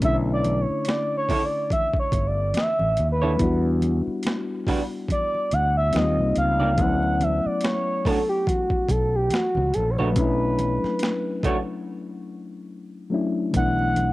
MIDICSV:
0, 0, Header, 1, 7, 480
1, 0, Start_track
1, 0, Key_signature, 2, "minor"
1, 0, Tempo, 845070
1, 11, Time_signature, 4, 2, 24, 8
1, 8025, End_track
2, 0, Start_track
2, 0, Title_t, "Analog synth lead"
2, 0, Program_c, 0, 81
2, 25, Note_on_c, 0, 76, 113
2, 94, Note_off_c, 0, 76, 0
2, 188, Note_on_c, 0, 74, 96
2, 346, Note_on_c, 0, 73, 86
2, 354, Note_off_c, 0, 74, 0
2, 505, Note_on_c, 0, 74, 100
2, 514, Note_off_c, 0, 73, 0
2, 658, Note_off_c, 0, 74, 0
2, 667, Note_on_c, 0, 73, 98
2, 820, Note_on_c, 0, 74, 91
2, 829, Note_off_c, 0, 73, 0
2, 976, Note_off_c, 0, 74, 0
2, 979, Note_on_c, 0, 76, 101
2, 1124, Note_off_c, 0, 76, 0
2, 1133, Note_on_c, 0, 73, 76
2, 1289, Note_on_c, 0, 74, 85
2, 1298, Note_off_c, 0, 73, 0
2, 1444, Note_off_c, 0, 74, 0
2, 1447, Note_on_c, 0, 76, 107
2, 1747, Note_off_c, 0, 76, 0
2, 1772, Note_on_c, 0, 71, 79
2, 2229, Note_off_c, 0, 71, 0
2, 2907, Note_on_c, 0, 74, 106
2, 3143, Note_on_c, 0, 78, 103
2, 3151, Note_off_c, 0, 74, 0
2, 3271, Note_off_c, 0, 78, 0
2, 3278, Note_on_c, 0, 76, 108
2, 3386, Note_on_c, 0, 75, 100
2, 3394, Note_off_c, 0, 76, 0
2, 3619, Note_off_c, 0, 75, 0
2, 3625, Note_on_c, 0, 77, 104
2, 3865, Note_on_c, 0, 78, 103
2, 3874, Note_off_c, 0, 77, 0
2, 4107, Note_on_c, 0, 76, 89
2, 4115, Note_off_c, 0, 78, 0
2, 4235, Note_on_c, 0, 74, 94
2, 4244, Note_off_c, 0, 76, 0
2, 4339, Note_on_c, 0, 73, 110
2, 4348, Note_off_c, 0, 74, 0
2, 4579, Note_on_c, 0, 69, 96
2, 4587, Note_off_c, 0, 73, 0
2, 4706, Note_off_c, 0, 69, 0
2, 4709, Note_on_c, 0, 67, 90
2, 4811, Note_on_c, 0, 66, 89
2, 4820, Note_off_c, 0, 67, 0
2, 5057, Note_on_c, 0, 69, 89
2, 5065, Note_off_c, 0, 66, 0
2, 5198, Note_on_c, 0, 67, 98
2, 5207, Note_off_c, 0, 69, 0
2, 5300, Note_on_c, 0, 66, 97
2, 5309, Note_off_c, 0, 67, 0
2, 5532, Note_on_c, 0, 69, 91
2, 5540, Note_off_c, 0, 66, 0
2, 5624, Note_on_c, 0, 73, 58
2, 5633, Note_off_c, 0, 69, 0
2, 5663, Note_on_c, 0, 71, 95
2, 5671, Note_off_c, 0, 73, 0
2, 6864, Note_off_c, 0, 71, 0
2, 7705, Note_on_c, 0, 78, 115
2, 8025, Note_off_c, 0, 78, 0
2, 8025, End_track
3, 0, Start_track
3, 0, Title_t, "Clean electric guitar"
3, 0, Program_c, 1, 27
3, 736, Note_on_c, 1, 62, 72
3, 741, Note_on_c, 1, 64, 71
3, 743, Note_on_c, 1, 69, 78
3, 747, Note_on_c, 1, 73, 81
3, 799, Note_off_c, 1, 62, 0
3, 801, Note_off_c, 1, 64, 0
3, 803, Note_off_c, 1, 69, 0
3, 804, Note_off_c, 1, 73, 0
3, 1827, Note_on_c, 1, 73, 70
3, 1833, Note_on_c, 1, 69, 67
3, 1835, Note_on_c, 1, 64, 61
3, 1837, Note_on_c, 1, 62, 59
3, 1878, Note_off_c, 1, 73, 0
3, 1881, Note_off_c, 1, 69, 0
3, 1882, Note_off_c, 1, 64, 0
3, 1883, Note_off_c, 1, 62, 0
3, 2656, Note_on_c, 1, 55, 68
3, 2661, Note_on_c, 1, 62, 71
3, 2663, Note_on_c, 1, 66, 68
3, 2666, Note_on_c, 1, 71, 74
3, 2719, Note_off_c, 1, 55, 0
3, 2721, Note_off_c, 1, 62, 0
3, 2722, Note_off_c, 1, 66, 0
3, 2724, Note_off_c, 1, 71, 0
3, 3747, Note_on_c, 1, 74, 61
3, 3752, Note_on_c, 1, 67, 56
3, 3754, Note_on_c, 1, 63, 61
3, 3757, Note_on_c, 1, 58, 49
3, 3798, Note_off_c, 1, 74, 0
3, 3801, Note_off_c, 1, 63, 0
3, 3801, Note_off_c, 1, 67, 0
3, 3803, Note_off_c, 1, 58, 0
3, 4574, Note_on_c, 1, 57, 77
3, 4582, Note_on_c, 1, 62, 85
3, 4583, Note_on_c, 1, 66, 89
3, 4585, Note_on_c, 1, 73, 82
3, 4638, Note_off_c, 1, 57, 0
3, 4642, Note_off_c, 1, 62, 0
3, 4642, Note_off_c, 1, 66, 0
3, 4644, Note_off_c, 1, 73, 0
3, 5674, Note_on_c, 1, 73, 56
3, 5678, Note_on_c, 1, 66, 55
3, 5681, Note_on_c, 1, 62, 55
3, 5685, Note_on_c, 1, 57, 55
3, 5721, Note_off_c, 1, 73, 0
3, 5723, Note_off_c, 1, 66, 0
3, 5725, Note_off_c, 1, 62, 0
3, 5727, Note_off_c, 1, 57, 0
3, 6498, Note_on_c, 1, 57, 78
3, 6501, Note_on_c, 1, 62, 76
3, 6506, Note_on_c, 1, 66, 86
3, 6507, Note_on_c, 1, 73, 81
3, 6560, Note_off_c, 1, 57, 0
3, 6561, Note_off_c, 1, 62, 0
3, 6564, Note_off_c, 1, 66, 0
3, 6564, Note_off_c, 1, 73, 0
3, 8025, End_track
4, 0, Start_track
4, 0, Title_t, "Reed electric piano"
4, 0, Program_c, 2, 4
4, 0, Control_c, 2, 64, 127
4, 0, Note_on_c, 2, 50, 59
4, 0, Note_on_c, 2, 57, 54
4, 9, Note_on_c, 2, 61, 50
4, 20, Control_c, 2, 64, 0
4, 20, Note_on_c, 2, 62, 56
4, 32, Note_on_c, 2, 64, 66
4, 109, Control_c, 2, 64, 127
4, 1898, Note_off_c, 2, 50, 0
4, 1903, Note_off_c, 2, 57, 0
4, 1908, Note_off_c, 2, 61, 0
4, 1910, Note_on_c, 2, 54, 44
4, 1913, Note_off_c, 2, 62, 0
4, 1919, Note_off_c, 2, 64, 0
4, 1919, Note_on_c, 2, 59, 60
4, 1930, Note_on_c, 2, 64, 60
4, 1937, Control_c, 2, 64, 0
4, 1941, Note_on_c, 2, 62, 50
4, 1944, Note_on_c, 2, 55, 56
4, 1952, Note_on_c, 2, 66, 72
4, 1961, Note_off_c, 2, 54, 0
4, 2023, Control_c, 2, 64, 127
4, 3342, Note_off_c, 2, 59, 0
4, 3348, Note_off_c, 2, 64, 0
4, 3354, Note_off_c, 2, 62, 0
4, 3355, Note_off_c, 2, 55, 0
4, 3359, Note_off_c, 2, 66, 0
4, 3359, Note_on_c, 2, 53, 58
4, 3367, Note_on_c, 2, 58, 60
4, 3373, Note_on_c, 2, 60, 65
4, 3377, Note_on_c, 2, 63, 60
4, 3379, Control_c, 2, 64, 0
4, 3384, Note_on_c, 2, 65, 69
4, 3397, Note_on_c, 2, 55, 69
4, 3407, Note_off_c, 2, 53, 0
4, 3475, Control_c, 2, 64, 127
4, 3832, Note_on_c, 2, 52, 51
4, 3844, Note_on_c, 2, 57, 63
4, 3849, Note_off_c, 2, 58, 0
4, 3852, Note_off_c, 2, 60, 0
4, 3854, Note_off_c, 2, 63, 0
4, 3854, Note_on_c, 2, 59, 54
4, 3858, Note_off_c, 2, 65, 0
4, 3859, Control_c, 2, 64, 0
4, 3864, Note_off_c, 2, 55, 0
4, 3864, Note_on_c, 2, 61, 54
4, 3870, Note_on_c, 2, 54, 67
4, 3875, Note_on_c, 2, 64, 74
4, 3883, Note_off_c, 2, 52, 0
4, 3970, Control_c, 2, 64, 127
4, 5743, Note_off_c, 2, 54, 0
4, 5745, Note_off_c, 2, 57, 0
4, 5750, Note_off_c, 2, 59, 0
4, 5750, Note_on_c, 2, 54, 67
4, 5755, Note_off_c, 2, 61, 0
4, 5760, Note_off_c, 2, 64, 0
4, 5760, Note_on_c, 2, 57, 61
4, 5772, Note_on_c, 2, 61, 57
4, 5779, Control_c, 2, 64, 0
4, 5783, Note_on_c, 2, 62, 53
4, 5794, Note_on_c, 2, 64, 77
4, 5895, Control_c, 2, 64, 127
4, 7418, Note_off_c, 2, 54, 0
4, 7423, Note_off_c, 2, 57, 0
4, 7429, Note_off_c, 2, 61, 0
4, 7434, Note_off_c, 2, 62, 0
4, 7440, Note_off_c, 2, 64, 0
4, 7441, Note_on_c, 2, 54, 58
4, 7446, Note_on_c, 2, 57, 57
4, 7452, Note_on_c, 2, 61, 52
4, 7457, Note_on_c, 2, 62, 54
4, 7464, Note_on_c, 2, 64, 69
4, 7674, Note_on_c, 2, 52, 55
4, 7679, Note_off_c, 2, 57, 0
4, 7686, Note_off_c, 2, 54, 0
4, 7686, Note_on_c, 2, 57, 50
4, 7692, Note_off_c, 2, 61, 0
4, 7694, Note_off_c, 2, 62, 0
4, 7696, Note_on_c, 2, 59, 55
4, 7698, Note_off_c, 2, 64, 0
4, 7698, Control_c, 2, 64, 0
4, 7708, Note_on_c, 2, 62, 56
4, 7717, Note_on_c, 2, 64, 70
4, 7811, Control_c, 2, 64, 127
4, 8025, Note_off_c, 2, 52, 0
4, 8025, Note_off_c, 2, 57, 0
4, 8025, Note_off_c, 2, 59, 0
4, 8025, Note_off_c, 2, 62, 0
4, 8025, Note_off_c, 2, 64, 0
4, 8025, End_track
5, 0, Start_track
5, 0, Title_t, "Fretless electric bass"
5, 0, Program_c, 3, 35
5, 18, Note_on_c, 3, 35, 95
5, 366, Note_off_c, 3, 35, 0
5, 1210, Note_on_c, 3, 31, 94
5, 1428, Note_off_c, 3, 31, 0
5, 1595, Note_on_c, 3, 33, 66
5, 1687, Note_off_c, 3, 33, 0
5, 1700, Note_on_c, 3, 39, 80
5, 1913, Note_off_c, 3, 39, 0
5, 1935, Note_on_c, 3, 40, 102
5, 2284, Note_off_c, 3, 40, 0
5, 3139, Note_on_c, 3, 38, 94
5, 3353, Note_off_c, 3, 38, 0
5, 3380, Note_on_c, 3, 39, 88
5, 3497, Note_off_c, 3, 39, 0
5, 3514, Note_on_c, 3, 36, 68
5, 3606, Note_off_c, 3, 36, 0
5, 3617, Note_on_c, 3, 37, 74
5, 3856, Note_off_c, 3, 37, 0
5, 3856, Note_on_c, 3, 38, 103
5, 4204, Note_off_c, 3, 38, 0
5, 5053, Note_on_c, 3, 35, 96
5, 5270, Note_off_c, 3, 35, 0
5, 5436, Note_on_c, 3, 37, 90
5, 5528, Note_off_c, 3, 37, 0
5, 5545, Note_on_c, 3, 34, 89
5, 5778, Note_off_c, 3, 34, 0
5, 5778, Note_on_c, 3, 35, 93
5, 6126, Note_off_c, 3, 35, 0
5, 7696, Note_on_c, 3, 35, 84
5, 8025, Note_off_c, 3, 35, 0
5, 8025, End_track
6, 0, Start_track
6, 0, Title_t, "Muted fretless electric bass strokes"
6, 398, Note_on_c, 9, 29, 45
6, 455, Note_off_c, 9, 29, 0
6, 2313, Note_on_c, 9, 29, 45
6, 2370, Note_off_c, 9, 29, 0
6, 4237, Note_on_c, 9, 29, 47
6, 4294, Note_off_c, 9, 29, 0
6, 6158, Note_on_c, 9, 29, 47
6, 6214, Note_off_c, 9, 29, 0
6, 8025, End_track
7, 0, Start_track
7, 0, Title_t, "Drums"
7, 10, Note_on_c, 9, 42, 85
7, 12, Note_on_c, 9, 36, 109
7, 16, Note_on_c, 9, 62, 27
7, 67, Note_off_c, 9, 42, 0
7, 69, Note_off_c, 9, 36, 0
7, 73, Note_off_c, 9, 62, 0
7, 249, Note_on_c, 9, 63, 61
7, 253, Note_on_c, 9, 42, 56
7, 305, Note_off_c, 9, 63, 0
7, 310, Note_off_c, 9, 42, 0
7, 482, Note_on_c, 9, 42, 76
7, 497, Note_on_c, 9, 62, 28
7, 503, Note_on_c, 9, 38, 92
7, 539, Note_off_c, 9, 42, 0
7, 554, Note_off_c, 9, 62, 0
7, 560, Note_off_c, 9, 38, 0
7, 731, Note_on_c, 9, 36, 75
7, 736, Note_on_c, 9, 46, 40
7, 739, Note_on_c, 9, 64, 62
7, 788, Note_off_c, 9, 36, 0
7, 793, Note_off_c, 9, 46, 0
7, 796, Note_off_c, 9, 64, 0
7, 968, Note_on_c, 9, 36, 85
7, 974, Note_on_c, 9, 62, 27
7, 974, Note_on_c, 9, 63, 56
7, 975, Note_on_c, 9, 42, 63
7, 1025, Note_off_c, 9, 36, 0
7, 1031, Note_off_c, 9, 62, 0
7, 1031, Note_off_c, 9, 63, 0
7, 1032, Note_off_c, 9, 42, 0
7, 1099, Note_on_c, 9, 36, 84
7, 1115, Note_on_c, 9, 62, 32
7, 1156, Note_off_c, 9, 36, 0
7, 1172, Note_off_c, 9, 62, 0
7, 1205, Note_on_c, 9, 36, 98
7, 1209, Note_on_c, 9, 42, 80
7, 1261, Note_off_c, 9, 36, 0
7, 1266, Note_off_c, 9, 42, 0
7, 1443, Note_on_c, 9, 42, 79
7, 1443, Note_on_c, 9, 63, 67
7, 1461, Note_on_c, 9, 38, 96
7, 1500, Note_off_c, 9, 42, 0
7, 1500, Note_off_c, 9, 63, 0
7, 1518, Note_off_c, 9, 38, 0
7, 1587, Note_on_c, 9, 62, 27
7, 1587, Note_on_c, 9, 63, 56
7, 1643, Note_off_c, 9, 62, 0
7, 1643, Note_off_c, 9, 63, 0
7, 1686, Note_on_c, 9, 42, 64
7, 1743, Note_off_c, 9, 42, 0
7, 1832, Note_on_c, 9, 64, 52
7, 1889, Note_off_c, 9, 64, 0
7, 1928, Note_on_c, 9, 42, 82
7, 1929, Note_on_c, 9, 36, 102
7, 1930, Note_on_c, 9, 62, 25
7, 1984, Note_off_c, 9, 42, 0
7, 1986, Note_off_c, 9, 36, 0
7, 1987, Note_off_c, 9, 62, 0
7, 2165, Note_on_c, 9, 63, 55
7, 2170, Note_on_c, 9, 42, 62
7, 2222, Note_off_c, 9, 63, 0
7, 2227, Note_off_c, 9, 42, 0
7, 2401, Note_on_c, 9, 42, 75
7, 2414, Note_on_c, 9, 62, 26
7, 2423, Note_on_c, 9, 38, 110
7, 2458, Note_off_c, 9, 42, 0
7, 2471, Note_off_c, 9, 62, 0
7, 2480, Note_off_c, 9, 38, 0
7, 2651, Note_on_c, 9, 36, 84
7, 2657, Note_on_c, 9, 46, 41
7, 2657, Note_on_c, 9, 64, 61
7, 2708, Note_off_c, 9, 36, 0
7, 2714, Note_off_c, 9, 46, 0
7, 2714, Note_off_c, 9, 64, 0
7, 2888, Note_on_c, 9, 36, 76
7, 2896, Note_on_c, 9, 62, 27
7, 2896, Note_on_c, 9, 63, 55
7, 2898, Note_on_c, 9, 42, 72
7, 2945, Note_off_c, 9, 36, 0
7, 2952, Note_off_c, 9, 62, 0
7, 2952, Note_off_c, 9, 63, 0
7, 2955, Note_off_c, 9, 42, 0
7, 3036, Note_on_c, 9, 62, 32
7, 3093, Note_off_c, 9, 62, 0
7, 3132, Note_on_c, 9, 42, 75
7, 3189, Note_off_c, 9, 42, 0
7, 3365, Note_on_c, 9, 63, 62
7, 3367, Note_on_c, 9, 42, 75
7, 3385, Note_on_c, 9, 38, 77
7, 3422, Note_off_c, 9, 63, 0
7, 3424, Note_off_c, 9, 42, 0
7, 3442, Note_off_c, 9, 38, 0
7, 3507, Note_on_c, 9, 63, 52
7, 3564, Note_off_c, 9, 63, 0
7, 3610, Note_on_c, 9, 42, 68
7, 3667, Note_off_c, 9, 42, 0
7, 3749, Note_on_c, 9, 64, 53
7, 3806, Note_off_c, 9, 64, 0
7, 3849, Note_on_c, 9, 42, 80
7, 3851, Note_on_c, 9, 36, 113
7, 3853, Note_on_c, 9, 62, 27
7, 3906, Note_off_c, 9, 42, 0
7, 3908, Note_off_c, 9, 36, 0
7, 3910, Note_off_c, 9, 62, 0
7, 3992, Note_on_c, 9, 62, 29
7, 4049, Note_off_c, 9, 62, 0
7, 4091, Note_on_c, 9, 63, 65
7, 4094, Note_on_c, 9, 42, 63
7, 4148, Note_off_c, 9, 63, 0
7, 4150, Note_off_c, 9, 42, 0
7, 4320, Note_on_c, 9, 42, 73
7, 4342, Note_on_c, 9, 38, 110
7, 4377, Note_off_c, 9, 42, 0
7, 4399, Note_off_c, 9, 38, 0
7, 4573, Note_on_c, 9, 36, 84
7, 4577, Note_on_c, 9, 64, 60
7, 4580, Note_on_c, 9, 46, 42
7, 4630, Note_off_c, 9, 36, 0
7, 4634, Note_off_c, 9, 64, 0
7, 4636, Note_off_c, 9, 46, 0
7, 4811, Note_on_c, 9, 36, 85
7, 4814, Note_on_c, 9, 62, 27
7, 4814, Note_on_c, 9, 63, 61
7, 4821, Note_on_c, 9, 42, 78
7, 4868, Note_off_c, 9, 36, 0
7, 4871, Note_off_c, 9, 62, 0
7, 4871, Note_off_c, 9, 63, 0
7, 4877, Note_off_c, 9, 42, 0
7, 4942, Note_on_c, 9, 36, 84
7, 4952, Note_on_c, 9, 62, 30
7, 4999, Note_off_c, 9, 36, 0
7, 5009, Note_off_c, 9, 62, 0
7, 5047, Note_on_c, 9, 36, 87
7, 5051, Note_on_c, 9, 42, 85
7, 5104, Note_off_c, 9, 36, 0
7, 5108, Note_off_c, 9, 42, 0
7, 5281, Note_on_c, 9, 63, 67
7, 5285, Note_on_c, 9, 42, 81
7, 5303, Note_on_c, 9, 38, 93
7, 5338, Note_off_c, 9, 63, 0
7, 5342, Note_off_c, 9, 42, 0
7, 5360, Note_off_c, 9, 38, 0
7, 5424, Note_on_c, 9, 63, 59
7, 5480, Note_off_c, 9, 63, 0
7, 5531, Note_on_c, 9, 42, 65
7, 5587, Note_off_c, 9, 42, 0
7, 5671, Note_on_c, 9, 64, 65
7, 5728, Note_off_c, 9, 64, 0
7, 5770, Note_on_c, 9, 42, 94
7, 5772, Note_on_c, 9, 36, 115
7, 5772, Note_on_c, 9, 62, 25
7, 5826, Note_off_c, 9, 42, 0
7, 5829, Note_off_c, 9, 36, 0
7, 5829, Note_off_c, 9, 62, 0
7, 6011, Note_on_c, 9, 63, 59
7, 6013, Note_on_c, 9, 42, 61
7, 6068, Note_off_c, 9, 63, 0
7, 6070, Note_off_c, 9, 42, 0
7, 6158, Note_on_c, 9, 38, 36
7, 6215, Note_off_c, 9, 38, 0
7, 6243, Note_on_c, 9, 42, 67
7, 6265, Note_on_c, 9, 38, 107
7, 6300, Note_off_c, 9, 42, 0
7, 6322, Note_off_c, 9, 38, 0
7, 6493, Note_on_c, 9, 36, 85
7, 6500, Note_on_c, 9, 42, 66
7, 6501, Note_on_c, 9, 64, 64
7, 6550, Note_off_c, 9, 36, 0
7, 6557, Note_off_c, 9, 42, 0
7, 6557, Note_off_c, 9, 64, 0
7, 7690, Note_on_c, 9, 42, 86
7, 7691, Note_on_c, 9, 36, 102
7, 7747, Note_off_c, 9, 42, 0
7, 7748, Note_off_c, 9, 36, 0
7, 7832, Note_on_c, 9, 62, 29
7, 7889, Note_off_c, 9, 62, 0
7, 7928, Note_on_c, 9, 63, 58
7, 7931, Note_on_c, 9, 42, 61
7, 7985, Note_off_c, 9, 63, 0
7, 7988, Note_off_c, 9, 42, 0
7, 8025, End_track
0, 0, End_of_file